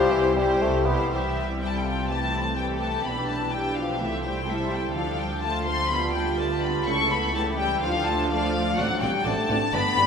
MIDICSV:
0, 0, Header, 1, 11, 480
1, 0, Start_track
1, 0, Key_signature, 0, "major"
1, 0, Tempo, 488202
1, 1103, Time_signature, 4, 2, 24, 8
1, 2527, Tempo, 478088
1, 10055, End_track
2, 0, Start_track
2, 0, Title_t, "Violin section"
2, 0, Program_c, 0, 48
2, 0, Note_on_c, 0, 72, 76
2, 611, Note_off_c, 0, 72, 0
2, 1108, Note_on_c, 0, 76, 74
2, 1550, Note_off_c, 0, 76, 0
2, 1588, Note_on_c, 0, 79, 72
2, 1651, Note_off_c, 0, 79, 0
2, 1651, Note_on_c, 0, 81, 59
2, 1718, Note_off_c, 0, 81, 0
2, 1720, Note_on_c, 0, 79, 65
2, 2052, Note_on_c, 0, 81, 76
2, 2056, Note_off_c, 0, 79, 0
2, 2516, Note_off_c, 0, 81, 0
2, 2526, Note_on_c, 0, 79, 72
2, 2606, Note_off_c, 0, 79, 0
2, 2746, Note_on_c, 0, 81, 69
2, 2991, Note_off_c, 0, 81, 0
2, 2999, Note_on_c, 0, 83, 74
2, 3237, Note_on_c, 0, 81, 69
2, 3242, Note_off_c, 0, 83, 0
2, 3472, Note_on_c, 0, 79, 75
2, 3476, Note_off_c, 0, 81, 0
2, 3719, Note_off_c, 0, 79, 0
2, 3720, Note_on_c, 0, 77, 71
2, 3957, Note_on_c, 0, 76, 81
2, 3963, Note_off_c, 0, 77, 0
2, 4198, Note_on_c, 0, 79, 67
2, 4200, Note_off_c, 0, 76, 0
2, 4435, Note_off_c, 0, 79, 0
2, 4449, Note_on_c, 0, 76, 71
2, 4678, Note_on_c, 0, 79, 65
2, 4685, Note_off_c, 0, 76, 0
2, 4906, Note_on_c, 0, 77, 72
2, 4919, Note_off_c, 0, 79, 0
2, 5146, Note_on_c, 0, 79, 78
2, 5147, Note_off_c, 0, 77, 0
2, 5393, Note_off_c, 0, 79, 0
2, 5393, Note_on_c, 0, 81, 85
2, 5632, Note_off_c, 0, 81, 0
2, 5641, Note_on_c, 0, 84, 89
2, 5866, Note_on_c, 0, 83, 83
2, 5875, Note_off_c, 0, 84, 0
2, 6103, Note_on_c, 0, 79, 75
2, 6112, Note_off_c, 0, 83, 0
2, 6345, Note_off_c, 0, 79, 0
2, 6351, Note_on_c, 0, 81, 75
2, 6590, Note_on_c, 0, 83, 76
2, 6593, Note_off_c, 0, 81, 0
2, 6832, Note_off_c, 0, 83, 0
2, 6848, Note_on_c, 0, 85, 91
2, 7081, Note_on_c, 0, 83, 83
2, 7082, Note_off_c, 0, 85, 0
2, 7319, Note_off_c, 0, 83, 0
2, 7324, Note_on_c, 0, 81, 79
2, 7404, Note_off_c, 0, 81, 0
2, 7554, Note_on_c, 0, 79, 92
2, 7790, Note_off_c, 0, 79, 0
2, 7803, Note_on_c, 0, 77, 88
2, 8035, Note_off_c, 0, 77, 0
2, 8036, Note_on_c, 0, 81, 83
2, 8277, Note_off_c, 0, 81, 0
2, 8281, Note_on_c, 0, 77, 92
2, 8751, Note_off_c, 0, 77, 0
2, 8753, Note_on_c, 0, 78, 102
2, 8992, Note_on_c, 0, 79, 86
2, 8996, Note_off_c, 0, 78, 0
2, 9230, Note_on_c, 0, 81, 96
2, 9232, Note_off_c, 0, 79, 0
2, 9717, Note_off_c, 0, 81, 0
2, 9718, Note_on_c, 0, 83, 112
2, 10055, Note_off_c, 0, 83, 0
2, 10055, End_track
3, 0, Start_track
3, 0, Title_t, "Flute"
3, 0, Program_c, 1, 73
3, 0, Note_on_c, 1, 72, 66
3, 599, Note_off_c, 1, 72, 0
3, 10055, End_track
4, 0, Start_track
4, 0, Title_t, "Oboe"
4, 0, Program_c, 2, 68
4, 0, Note_on_c, 2, 67, 66
4, 605, Note_off_c, 2, 67, 0
4, 10055, End_track
5, 0, Start_track
5, 0, Title_t, "Violin section"
5, 0, Program_c, 3, 48
5, 0, Note_on_c, 3, 67, 70
5, 0, Note_on_c, 3, 72, 62
5, 357, Note_off_c, 3, 72, 0
5, 358, Note_off_c, 3, 67, 0
5, 369, Note_on_c, 3, 72, 65
5, 370, Note_on_c, 3, 67, 64
5, 849, Note_off_c, 3, 72, 0
5, 850, Note_off_c, 3, 67, 0
5, 867, Note_on_c, 3, 72, 65
5, 873, Note_on_c, 3, 67, 61
5, 1097, Note_off_c, 3, 67, 0
5, 1097, Note_off_c, 3, 72, 0
5, 1108, Note_on_c, 3, 72, 53
5, 1109, Note_on_c, 3, 67, 49
5, 1187, Note_off_c, 3, 72, 0
5, 1358, Note_on_c, 3, 71, 50
5, 1437, Note_off_c, 3, 71, 0
5, 1550, Note_off_c, 3, 67, 0
5, 1589, Note_on_c, 3, 64, 46
5, 1595, Note_on_c, 3, 69, 48
5, 1817, Note_off_c, 3, 64, 0
5, 1837, Note_on_c, 3, 65, 49
5, 2052, Note_off_c, 3, 69, 0
5, 2064, Note_off_c, 3, 65, 0
5, 2075, Note_on_c, 3, 67, 46
5, 2080, Note_off_c, 3, 67, 0
5, 2080, Note_on_c, 3, 67, 46
5, 2304, Note_off_c, 3, 67, 0
5, 2311, Note_on_c, 3, 64, 55
5, 2390, Note_off_c, 3, 64, 0
5, 2536, Note_on_c, 3, 69, 49
5, 2538, Note_on_c, 3, 67, 51
5, 3002, Note_off_c, 3, 69, 0
5, 3008, Note_off_c, 3, 67, 0
5, 3020, Note_on_c, 3, 67, 51
5, 3472, Note_off_c, 3, 67, 0
5, 3484, Note_on_c, 3, 67, 52
5, 3966, Note_on_c, 3, 72, 50
5, 4423, Note_off_c, 3, 67, 0
5, 4445, Note_on_c, 3, 69, 53
5, 4920, Note_off_c, 3, 72, 0
5, 4921, Note_off_c, 3, 69, 0
5, 4933, Note_on_c, 3, 69, 51
5, 4935, Note_off_c, 3, 69, 0
5, 4935, Note_on_c, 3, 69, 55
5, 5397, Note_off_c, 3, 69, 0
5, 5401, Note_on_c, 3, 65, 49
5, 5880, Note_off_c, 3, 65, 0
5, 5885, Note_on_c, 3, 69, 53
5, 5887, Note_on_c, 3, 62, 59
5, 6346, Note_off_c, 3, 62, 0
5, 6351, Note_off_c, 3, 69, 0
5, 6358, Note_on_c, 3, 62, 58
5, 6361, Note_on_c, 3, 71, 53
5, 6826, Note_off_c, 3, 62, 0
5, 6836, Note_off_c, 3, 71, 0
5, 6841, Note_on_c, 3, 69, 58
5, 6844, Note_off_c, 3, 69, 0
5, 6844, Note_on_c, 3, 69, 60
5, 7315, Note_on_c, 3, 67, 58
5, 7321, Note_off_c, 3, 69, 0
5, 7797, Note_off_c, 3, 67, 0
5, 7800, Note_on_c, 3, 69, 61
5, 7804, Note_on_c, 3, 65, 61
5, 8269, Note_off_c, 3, 69, 0
5, 8279, Note_on_c, 3, 74, 60
5, 8281, Note_off_c, 3, 65, 0
5, 8282, Note_on_c, 3, 62, 65
5, 8745, Note_off_c, 3, 74, 0
5, 8752, Note_off_c, 3, 62, 0
5, 8754, Note_on_c, 3, 66, 61
5, 8757, Note_on_c, 3, 74, 66
5, 8835, Note_off_c, 3, 66, 0
5, 8838, Note_off_c, 3, 74, 0
5, 8996, Note_on_c, 3, 66, 57
5, 8997, Note_on_c, 3, 74, 57
5, 9076, Note_off_c, 3, 66, 0
5, 9077, Note_off_c, 3, 74, 0
5, 9231, Note_on_c, 3, 74, 60
5, 9233, Note_on_c, 3, 66, 59
5, 9311, Note_off_c, 3, 74, 0
5, 9313, Note_off_c, 3, 66, 0
5, 9473, Note_on_c, 3, 66, 61
5, 9473, Note_on_c, 3, 74, 57
5, 9553, Note_off_c, 3, 66, 0
5, 9553, Note_off_c, 3, 74, 0
5, 9718, Note_on_c, 3, 67, 62
5, 9720, Note_on_c, 3, 74, 68
5, 9799, Note_off_c, 3, 67, 0
5, 9801, Note_off_c, 3, 74, 0
5, 9956, Note_on_c, 3, 74, 61
5, 9957, Note_on_c, 3, 67, 63
5, 10036, Note_off_c, 3, 74, 0
5, 10038, Note_off_c, 3, 67, 0
5, 10055, End_track
6, 0, Start_track
6, 0, Title_t, "Clarinet"
6, 0, Program_c, 4, 71
6, 0, Note_on_c, 4, 64, 82
6, 837, Note_off_c, 4, 64, 0
6, 10055, End_track
7, 0, Start_track
7, 0, Title_t, "Viola section"
7, 0, Program_c, 5, 48
7, 0, Note_on_c, 5, 55, 61
7, 0, Note_on_c, 5, 64, 68
7, 352, Note_off_c, 5, 64, 0
7, 353, Note_off_c, 5, 55, 0
7, 364, Note_on_c, 5, 55, 59
7, 364, Note_on_c, 5, 64, 56
7, 839, Note_off_c, 5, 55, 0
7, 839, Note_off_c, 5, 64, 0
7, 851, Note_on_c, 5, 55, 60
7, 851, Note_on_c, 5, 64, 66
7, 1093, Note_off_c, 5, 64, 0
7, 1094, Note_off_c, 5, 55, 0
7, 1103, Note_on_c, 5, 64, 47
7, 1105, Note_on_c, 5, 55, 56
7, 1547, Note_off_c, 5, 64, 0
7, 1589, Note_on_c, 5, 60, 46
7, 2015, Note_off_c, 5, 55, 0
7, 2059, Note_on_c, 5, 52, 53
7, 2515, Note_off_c, 5, 52, 0
7, 2526, Note_on_c, 5, 52, 58
7, 3011, Note_off_c, 5, 60, 0
7, 3012, Note_on_c, 5, 62, 47
7, 3937, Note_off_c, 5, 52, 0
7, 3950, Note_off_c, 5, 62, 0
7, 3970, Note_on_c, 5, 57, 49
7, 3970, Note_on_c, 5, 64, 46
7, 4439, Note_off_c, 5, 64, 0
7, 4445, Note_off_c, 5, 57, 0
7, 4448, Note_on_c, 5, 55, 52
7, 4451, Note_on_c, 5, 64, 58
7, 4915, Note_off_c, 5, 64, 0
7, 4923, Note_off_c, 5, 55, 0
7, 4923, Note_on_c, 5, 53, 52
7, 4927, Note_on_c, 5, 62, 49
7, 5389, Note_off_c, 5, 53, 0
7, 5399, Note_on_c, 5, 65, 46
7, 5401, Note_on_c, 5, 53, 46
7, 5403, Note_off_c, 5, 62, 0
7, 5870, Note_off_c, 5, 53, 0
7, 5875, Note_off_c, 5, 65, 0
7, 5886, Note_on_c, 5, 55, 59
7, 5887, Note_on_c, 5, 65, 61
7, 6819, Note_off_c, 5, 65, 0
7, 6838, Note_off_c, 5, 55, 0
7, 6841, Note_on_c, 5, 57, 59
7, 6844, Note_on_c, 5, 64, 60
7, 7314, Note_off_c, 5, 64, 0
7, 7320, Note_off_c, 5, 57, 0
7, 7322, Note_on_c, 5, 52, 53
7, 7326, Note_on_c, 5, 64, 54
7, 7792, Note_off_c, 5, 64, 0
7, 7799, Note_on_c, 5, 62, 62
7, 7800, Note_off_c, 5, 52, 0
7, 7803, Note_on_c, 5, 53, 60
7, 8278, Note_off_c, 5, 62, 0
7, 8280, Note_off_c, 5, 53, 0
7, 8285, Note_on_c, 5, 57, 67
7, 8286, Note_on_c, 5, 65, 63
7, 8763, Note_off_c, 5, 57, 0
7, 8763, Note_off_c, 5, 65, 0
7, 8768, Note_on_c, 5, 62, 69
7, 8771, Note_on_c, 5, 60, 59
7, 8849, Note_off_c, 5, 62, 0
7, 8851, Note_off_c, 5, 60, 0
7, 9010, Note_on_c, 5, 62, 61
7, 9011, Note_on_c, 5, 60, 60
7, 9090, Note_off_c, 5, 62, 0
7, 9091, Note_off_c, 5, 60, 0
7, 9251, Note_on_c, 5, 60, 49
7, 9253, Note_on_c, 5, 62, 53
7, 9331, Note_off_c, 5, 60, 0
7, 9333, Note_off_c, 5, 62, 0
7, 9496, Note_on_c, 5, 60, 62
7, 9496, Note_on_c, 5, 62, 68
7, 9576, Note_off_c, 5, 60, 0
7, 9576, Note_off_c, 5, 62, 0
7, 9729, Note_on_c, 5, 62, 66
7, 9733, Note_on_c, 5, 59, 71
7, 9809, Note_off_c, 5, 62, 0
7, 9814, Note_off_c, 5, 59, 0
7, 9972, Note_on_c, 5, 59, 59
7, 9972, Note_on_c, 5, 62, 58
7, 10052, Note_off_c, 5, 59, 0
7, 10052, Note_off_c, 5, 62, 0
7, 10055, End_track
8, 0, Start_track
8, 0, Title_t, "Bassoon"
8, 0, Program_c, 6, 70
8, 0, Note_on_c, 6, 53, 86
8, 119, Note_on_c, 6, 52, 75
8, 134, Note_off_c, 6, 53, 0
8, 350, Note_off_c, 6, 52, 0
8, 356, Note_on_c, 6, 55, 85
8, 605, Note_on_c, 6, 57, 97
8, 620, Note_off_c, 6, 55, 0
8, 847, Note_on_c, 6, 59, 80
8, 862, Note_off_c, 6, 57, 0
8, 1097, Note_off_c, 6, 59, 0
8, 10055, End_track
9, 0, Start_track
9, 0, Title_t, "French horn section"
9, 0, Program_c, 7, 60
9, 0, Note_on_c, 7, 67, 94
9, 821, Note_off_c, 7, 67, 0
9, 1102, Note_on_c, 7, 52, 62
9, 1546, Note_off_c, 7, 52, 0
9, 1587, Note_on_c, 7, 55, 64
9, 2048, Note_off_c, 7, 55, 0
9, 2054, Note_on_c, 7, 57, 67
9, 2520, Note_on_c, 7, 55, 57
9, 2527, Note_off_c, 7, 57, 0
9, 2763, Note_off_c, 7, 55, 0
9, 2764, Note_on_c, 7, 57, 61
9, 3001, Note_off_c, 7, 57, 0
9, 3005, Note_on_c, 7, 59, 64
9, 3113, Note_off_c, 7, 59, 0
9, 3230, Note_on_c, 7, 57, 54
9, 3342, Note_off_c, 7, 57, 0
9, 3487, Note_on_c, 7, 55, 67
9, 3717, Note_on_c, 7, 53, 66
9, 3722, Note_off_c, 7, 55, 0
9, 3957, Note_off_c, 7, 53, 0
9, 3969, Note_on_c, 7, 52, 65
9, 4202, Note_off_c, 7, 52, 0
9, 4218, Note_on_c, 7, 55, 62
9, 4322, Note_off_c, 7, 55, 0
9, 4450, Note_on_c, 7, 52, 65
9, 4673, Note_on_c, 7, 55, 61
9, 4681, Note_off_c, 7, 52, 0
9, 4911, Note_off_c, 7, 55, 0
9, 4918, Note_on_c, 7, 53, 67
9, 5026, Note_off_c, 7, 53, 0
9, 5175, Note_on_c, 7, 55, 59
9, 5280, Note_off_c, 7, 55, 0
9, 5415, Note_on_c, 7, 57, 75
9, 5643, Note_off_c, 7, 57, 0
9, 5654, Note_on_c, 7, 60, 72
9, 5887, Note_off_c, 7, 60, 0
9, 5894, Note_on_c, 7, 59, 72
9, 6126, Note_off_c, 7, 59, 0
9, 6146, Note_on_c, 7, 55, 64
9, 6248, Note_off_c, 7, 55, 0
9, 6376, Note_on_c, 7, 57, 66
9, 6479, Note_off_c, 7, 57, 0
9, 6608, Note_on_c, 7, 59, 73
9, 6713, Note_off_c, 7, 59, 0
9, 6841, Note_on_c, 7, 61, 76
9, 7070, Note_on_c, 7, 59, 64
9, 7073, Note_off_c, 7, 61, 0
9, 7314, Note_off_c, 7, 59, 0
9, 7320, Note_on_c, 7, 57, 74
9, 7555, Note_on_c, 7, 55, 78
9, 7559, Note_off_c, 7, 57, 0
9, 7796, Note_off_c, 7, 55, 0
9, 7812, Note_on_c, 7, 53, 72
9, 7916, Note_off_c, 7, 53, 0
9, 8061, Note_on_c, 7, 57, 73
9, 8280, Note_on_c, 7, 53, 78
9, 8285, Note_off_c, 7, 57, 0
9, 8751, Note_off_c, 7, 53, 0
9, 8766, Note_on_c, 7, 54, 85
9, 9003, Note_off_c, 7, 54, 0
9, 9005, Note_on_c, 7, 55, 74
9, 9237, Note_on_c, 7, 57, 89
9, 9238, Note_off_c, 7, 55, 0
9, 9720, Note_off_c, 7, 57, 0
9, 9727, Note_on_c, 7, 59, 90
9, 10055, Note_off_c, 7, 59, 0
9, 10055, End_track
10, 0, Start_track
10, 0, Title_t, "Cello section"
10, 0, Program_c, 8, 48
10, 0, Note_on_c, 8, 48, 62
10, 593, Note_off_c, 8, 48, 0
10, 1099, Note_on_c, 8, 36, 63
10, 2964, Note_off_c, 8, 36, 0
10, 3008, Note_on_c, 8, 47, 54
10, 3967, Note_off_c, 8, 47, 0
10, 3968, Note_on_c, 8, 48, 58
10, 4914, Note_on_c, 8, 50, 60
10, 4921, Note_off_c, 8, 48, 0
10, 6793, Note_off_c, 8, 50, 0
10, 6833, Note_on_c, 8, 49, 69
10, 7796, Note_off_c, 8, 49, 0
10, 7796, Note_on_c, 8, 50, 65
10, 8739, Note_off_c, 8, 50, 0
10, 8763, Note_on_c, 8, 45, 79
10, 8843, Note_off_c, 8, 45, 0
10, 9001, Note_on_c, 8, 45, 73
10, 9081, Note_off_c, 8, 45, 0
10, 9238, Note_on_c, 8, 45, 70
10, 9318, Note_off_c, 8, 45, 0
10, 9482, Note_on_c, 8, 45, 72
10, 9563, Note_off_c, 8, 45, 0
10, 9716, Note_on_c, 8, 43, 75
10, 9796, Note_off_c, 8, 43, 0
10, 9961, Note_on_c, 8, 43, 65
10, 10041, Note_off_c, 8, 43, 0
10, 10055, End_track
11, 0, Start_track
11, 0, Title_t, "Double bass section"
11, 0, Program_c, 10, 48
11, 122, Note_on_c, 10, 36, 77
11, 556, Note_off_c, 10, 36, 0
11, 618, Note_on_c, 10, 36, 75
11, 1048, Note_off_c, 10, 36, 0
11, 1101, Note_on_c, 10, 36, 57
11, 2965, Note_off_c, 10, 36, 0
11, 3001, Note_on_c, 10, 35, 56
11, 3959, Note_on_c, 10, 36, 57
11, 3964, Note_off_c, 10, 35, 0
11, 4915, Note_on_c, 10, 38, 58
11, 4917, Note_off_c, 10, 36, 0
11, 6794, Note_off_c, 10, 38, 0
11, 6841, Note_on_c, 10, 37, 61
11, 7800, Note_off_c, 10, 37, 0
11, 7807, Note_on_c, 10, 38, 67
11, 8745, Note_off_c, 10, 38, 0
11, 8763, Note_on_c, 10, 33, 77
11, 8843, Note_off_c, 10, 33, 0
11, 9001, Note_on_c, 10, 33, 64
11, 9082, Note_off_c, 10, 33, 0
11, 9243, Note_on_c, 10, 33, 70
11, 9323, Note_off_c, 10, 33, 0
11, 9478, Note_on_c, 10, 33, 75
11, 9558, Note_off_c, 10, 33, 0
11, 9719, Note_on_c, 10, 31, 72
11, 9799, Note_off_c, 10, 31, 0
11, 9955, Note_on_c, 10, 31, 74
11, 10035, Note_off_c, 10, 31, 0
11, 10055, End_track
0, 0, End_of_file